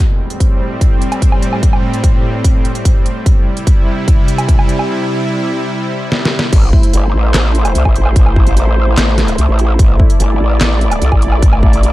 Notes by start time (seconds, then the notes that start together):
0.00 A2 G3 C4
0.30 closed hi-hat
0.40 kick, closed hi-hat
0.81 kick, closed hi-hat
1.02 closed hi-hat
1.12 closed hi-hat, low woodblock
1.22 kick, closed hi-hat
1.32 low woodblock
1.42 closed hi-hat
1.53 low woodblock
1.63 kick, closed hi-hat
1.73 low woodblock
1.94 closed hi-hat
2.04 kick, closed hi-hat
2.44 kick, closed hi-hat
2.65 closed hi-hat
2.75 closed hi-hat
2.85 kick, closed hi-hat
3.06 closed hi-hat
3.26 C3 G3 E4, kick, closed hi-hat
3.57 closed hi-hat
3.67 kick, closed hi-hat
4.08 kick, closed hi-hat
4.28 closed hi-hat
4.38 closed hi-hat, low woodblock
4.49 kick, closed hi-hat
4.59 low woodblock
4.69 closed hi-hat
4.79 low woodblock
6.12 snare
6.25 snare
6.39 snare
6.53 A1 A3 E4 C5, kick, closed hi-hat, crash
6.73 kick
6.83 closed hi-hat
6.93 G1, closed hi-hat
7.14 A1
7.34 A1, snare, clap, closed hi-hat
7.55 closed hi-hat
7.65 closed hi-hat, low woodblock
7.75 C2, closed hi-hat
7.85 A1, kick, low woodblock
7.96 closed hi-hat
8.06 low woodblock
8.16 A1, kick, closed hi-hat
8.26 low woodblock
8.36 A1, kick
8.47 closed hi-hat
8.57 closed hi-hat
8.98 A1, snare, clap, closed hi-hat
9.18 snare, closed hi-hat
9.28 closed hi-hat
9.38 C2, closed hi-hat
9.49 A1
9.59 closed hi-hat
9.79 A1 D5, kick, closed hi-hat
10.00 kick
10.10 closed hi-hat
10.20 G1, closed hi-hat
10.40 A1
10.61 A1, snare, clap, closed hi-hat
10.81 closed hi-hat
10.91 closed hi-hat, low woodblock
11.02 C2, closed hi-hat
11.12 A1, kick, low woodblock
11.22 closed hi-hat
11.32 low woodblock
11.42 A1, kick, closed hi-hat
11.53 low woodblock
11.63 A1, kick
11.73 closed hi-hat
11.83 closed hi-hat